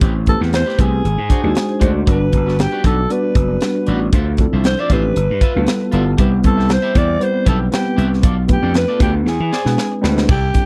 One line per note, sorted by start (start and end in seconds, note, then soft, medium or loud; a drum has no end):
0.01 0.34 A1 medium
0.01 0.20 C4 medium
0.01 0.15 G4 medium
0.01 0.14 B4 medium
0.01 kick loud
0.01 closed hi-hat medium
0.16 muted clean electric guitar stroke soft
0.26 0.74 A3 medium
0.26 0.34 B3 soft
0.26 0.74 E4 medium
0.26 0.74 G4 medium
0.26 0.40 A4 medium
0.26 0.74 B4 medium
0.26 muted clean electric guitar stroke soft
0.26 kick medium
0.26 closed hi-hat medium
0.34 0.77 C4 medium
0.40 0.62 E2 medium
0.40 0.51 C4 soft
0.40 0.52 G4 medium
0.40 0.52 B4 soft
0.40 snare soft
0.52 0.82 C5 medium
0.52 muted clean electric guitar stroke soft
0.52 snare loud
0.52 closed hi-hat medium
0.66 0.77 C4 medium
0.66 0.78 G4 medium
0.66 0.79 B4 medium
0.66 snare soft
0.78 1.00 C2 medium
0.78 1.05 A3 medium
0.78 0.94 C4 medium
0.78 1.05 C4 medium
0.78 1.05 E4 medium
0.78 0.92 G4 medium
0.78 1.05 G4 medium
0.78 1.83 G#4 medium
0.78 0.92 B4 medium
0.78 1.05 B4 medium
0.78 kick loud
0.78 closed hi-hat medium
0.93 muted clean electric guitar stroke medium
1.04 1.16 G#1 medium
1.04 closed hi-hat medium
1.18 1.28 G#2 medium
1.18 muted clean electric guitar stroke soft
1.29 1.48 D4 medium
1.29 1.43 F#4 medium
1.29 1.42 C5 medium
1.29 kick medium
1.29 closed hi-hat medium
1.43 1.54 D#2 medium
1.43 1.78 G#3 medium
1.43 1.78 D4 medium
1.43 1.78 D#4 medium
1.43 1.78 F#4 medium
1.43 1.78 C5 medium
1.43 muted clean electric guitar stroke soft
1.55 muted clean electric guitar stroke soft
1.55 snare loud
1.55 closed hi-hat medium
1.69 muted clean electric guitar stroke soft
1.80 2.02 D2 medium
1.80 2.04 G#3 medium
1.80 1.99 D4 medium
1.80 2.04 D4 medium
1.80 2.04 D#4 medium
1.80 1.94 F#4 medium
1.80 2.05 F#4 medium
1.80 1.93 C5 medium
1.80 2.05 C5 loud
1.80 kick medium
1.80 closed hi-hat medium
1.94 muted clean electric guitar stroke soft
2.06 2.28 G1 medium
2.06 3.00 G3 medium
2.06 3.00 B3 medium
2.06 2.26 D4 medium
2.06 3.00 D4 medium
2.06 3.00 F#4 soft
2.06 2.20 F#4 medium
2.06 3.00 B4 medium
2.06 2.19 B4 medium
2.06 2.62 B4 medium
2.06 kick loud
2.06 closed hi-hat medium
2.20 muted clean electric guitar stroke soft
2.32 2.66 G1 medium
2.32 muted clean electric guitar stroke soft
2.32 kick medium
2.32 closed hi-hat medium
2.46 2.58 D4 soft
2.46 2.58 F#4 soft
2.46 2.59 B4 medium
2.46 snare soft
2.59 2.85 G4 medium
2.59 snare loud
2.59 closed hi-hat medium
2.72 2.83 D4 medium
2.72 2.83 F#4 medium
2.72 2.84 B4 medium
2.84 3.05 B1 medium
2.84 2.99 D4 medium
2.84 2.98 F#4 medium
2.84 3.13 A4 medium
2.84 2.96 B4 medium
2.84 kick medium
2.84 closed hi-hat medium
2.97 muted clean electric guitar stroke soft
3.09 3.56 G3 medium
3.09 3.57 B3 medium
3.09 3.57 D4 medium
3.09 3.57 F#4 medium
3.09 3.88 B4 medium
3.09 3.57 D5 medium
3.09 muted clean electric guitar stroke soft
3.09 closed hi-hat medium
3.24 muted clean electric guitar stroke soft
3.35 3.57 F#1 medium
3.35 kick medium
3.35 closed hi-hat medium
3.50 muted clean electric guitar stroke soft
3.61 4.13 G3 medium
3.61 4.14 B3 medium
3.61 4.14 D4 medium
3.61 4.14 F#4 medium
3.61 4.14 B4 medium
3.61 muted clean electric guitar stroke soft
3.61 snare loud
3.61 closed hi-hat medium
3.75 muted clean electric guitar stroke soft
3.87 4.09 A1 medium
3.87 4.06 D4 medium
3.87 4.01 F#4 medium
3.87 4.01 B4 medium
3.87 closed hi-hat medium
4.02 muted clean electric guitar stroke soft
4.13 4.46 D2 medium
4.13 4.32 F4 medium
4.13 4.28 C5 medium
4.13 4.26 E5 medium
4.13 kick loud
4.13 closed hi-hat medium
4.28 muted clean electric guitar stroke soft
4.37 4.85 F3 medium
4.37 4.86 C4 medium
4.37 4.86 D4 medium
4.37 4.86 E4 medium
4.37 4.86 A4 medium
4.37 muted clean electric guitar stroke soft
4.37 kick medium
4.37 closed hi-hat medium
4.53 4.74 C2 medium
4.53 4.64 F4 soft
4.53 4.65 C5 medium
4.53 4.65 E5 medium
4.64 4.81 C5 medium
4.64 muted clean electric guitar stroke soft
4.64 snare loud
4.64 closed hi-hat medium
4.79 4.89 F4 medium
4.79 4.90 C5 medium
4.79 4.94 D5 medium
4.79 4.90 E5 medium
4.90 5.11 A1 medium
4.90 5.16 F3 medium
4.90 5.16 C4 medium
4.90 5.17 D4 medium
4.90 5.17 E4 medium
4.90 5.05 F4 medium
4.90 5.17 G4 medium
4.90 5.94 B4 medium
4.90 5.04 C5 medium
4.90 5.03 E5 medium
4.90 kick medium
4.90 closed hi-hat medium
5.05 muted clean electric guitar stroke soft
5.16 5.27 G1 medium
5.16 closed hi-hat medium
5.30 5.40 G2 medium
5.30 muted clean electric guitar stroke soft
5.41 5.60 F4 medium
5.41 5.55 B4 medium
5.41 5.54 E5 medium
5.41 kick medium
5.41 closed hi-hat medium
5.55 5.66 D2 medium
5.55 5.89 G3 medium
5.55 5.89 B3 medium
5.55 5.89 E4 medium
5.55 5.90 F4 medium
5.55 5.90 A4 loud
5.55 muted clean electric guitar stroke soft
5.67 muted clean electric guitar stroke soft
5.67 snare loud
5.67 closed hi-hat medium
5.80 muted clean electric guitar stroke soft
5.92 6.14 G1 medium
5.92 6.16 G3 medium
5.92 6.16 B3 medium
5.92 6.17 E4 medium
5.92 6.11 F4 medium
5.92 6.17 F4 medium
5.92 6.17 A4 medium
5.92 6.06 B4 medium
5.92 6.05 E5 medium
5.92 closed hi-hat medium
6.06 muted clean electric guitar stroke soft
6.17 6.40 C2 medium
6.17 7.12 G3 medium
6.17 7.12 B3 medium
6.17 7.12 C4 medium
6.17 7.12 E4 medium
6.17 6.37 G4 medium
6.17 6.31 B4 medium
6.17 7.12 B4 medium
6.17 6.31 E5 medium
6.17 kick medium
6.17 closed hi-hat medium
6.32 muted clean electric guitar stroke soft
6.43 6.77 C2 medium
6.43 6.75 A4 medium
6.43 muted clean electric guitar stroke soft
6.43 kick medium
6.43 closed hi-hat medium
6.57 6.68 G4 soft
6.57 6.68 B4 medium
6.57 6.69 E5 medium
6.57 snare soft
6.69 muted clean electric guitar stroke soft
6.69 snare loud
6.69 closed hi-hat medium
6.73 6.99 C5 medium
6.82 6.93 G4 medium
6.82 6.94 B4 medium
6.82 6.95 E5 medium
6.94 7.17 E2 medium
6.94 7.10 G4 medium
6.94 7.08 B4 medium
6.94 7.25 D5 loud
6.94 7.07 E5 medium
6.94 kick medium
6.94 closed hi-hat medium
7.08 muted clean electric guitar stroke soft
7.20 7.67 G3 medium
7.20 7.67 B3 medium
7.20 7.67 C4 medium
7.20 7.68 E4 medium
7.20 7.68 B4 medium
7.20 7.48 C5 medium
7.20 closed hi-hat medium
7.34 muted clean electric guitar stroke soft
7.45 7.68 B1 medium
7.45 7.65 G4 medium
7.45 7.60 A4 medium
7.45 7.60 B4 medium
7.45 7.58 E5 medium
7.45 kick medium
7.45 closed hi-hat medium
7.59 muted clean electric guitar stroke soft
7.71 8.23 G3 medium
7.71 8.23 B3 medium
7.71 8.23 C4 medium
7.71 8.23 E4 medium
7.71 8.10 G4 medium
7.71 8.24 B4 medium
7.71 muted clean electric guitar stroke soft
7.71 snare loud
7.71 closed hi-hat medium
7.85 muted clean electric guitar stroke soft
7.96 8.24 C2 medium
7.96 8.16 G4 medium
7.96 8.11 B4 medium
7.96 8.09 E5 medium
7.96 closed hi-hat medium
8.10 muted clean electric guitar stroke soft
8.10 snare soft
8.23 8.56 B1 loud
8.23 8.42 F4 medium
8.23 8.37 A4 medium
8.23 8.36 D5 medium
8.23 kick loud
8.23 closed hi-hat medium
8.37 muted clean electric guitar stroke soft
8.48 8.95 A3 medium
8.48 8.95 B3 medium
8.48 8.95 D4 medium
8.48 8.96 F4 medium
8.48 8.96 B4 medium
8.48 muted clean electric guitar stroke soft
8.48 kick medium
8.48 closed hi-hat medium
8.52 8.75 G4 medium
8.62 8.84 F2 medium
8.62 8.73 F4 soft
8.62 8.74 A4 medium
8.62 8.74 D5 medium
8.74 9.00 B4 medium
8.74 muted clean electric guitar stroke soft
8.74 snare loud
8.74 closed hi-hat medium
8.88 8.99 F4 medium
8.88 9.00 A4 medium
8.88 9.00 D5 medium
8.98 9.22 D2 medium
8.98 9.25 A3 medium
8.98 9.26 B3 medium
8.98 9.26 D4 medium
8.98 9.26 F4 medium
8.98 9.16 F4 medium
8.98 9.14 G4 medium
8.98 9.14 A4 medium
8.98 9.26 B4 medium
8.98 9.13 D5 medium
8.98 kick loud
8.98 closed hi-hat medium
9.14 muted clean electric guitar stroke soft
9.26 9.38 E2 medium
9.26 10.01 G#4 medium
9.26 snare medium
9.40 9.50 E3 medium
9.40 muted clean electric guitar stroke soft
9.51 9.71 G#4 medium
9.51 9.65 C5 medium
9.51 9.64 D5 medium
9.51 snare medium
9.64 9.76 B2 medium
9.64 9.99 G#3 medium
9.64 9.99 C4 medium
9.64 9.99 D4 medium
9.64 10.00 E4 medium
9.64 10.00 B4 medium
9.64 muted clean electric guitar stroke soft
9.64 snare soft
9.77 muted clean electric guitar stroke soft
9.77 snare medium
9.92 muted clean electric guitar stroke soft
10.01 10.25 D2 medium
10.01 10.26 G#3 medium
10.01 10.26 C4 medium
10.01 10.26 D4 medium
10.01 10.26 E4 medium
10.01 10.27 B4 medium
10.01 snare medium
10.17 muted clean electric guitar stroke soft
10.17 snare medium
10.28 10.51 C2 loud
10.28 10.48 E4 medium
10.28 10.66 G4 medium
10.28 10.42 A4 medium
10.28 10.41 D5 medium
10.28 kick loud
10.28 crash medium
10.28 muted conga soft
10.42 muted clean electric guitar stroke medium
10.53 10.66 G3 medium
10.53 10.66 C4 medium
10.53 10.66 D4 medium
10.53 10.66 E4 medium
10.53 10.66 A4 medium
10.53 muted clean electric guitar stroke soft
10.53 kick medium
10.53 closed hi-hat medium
10.53 muted conga soft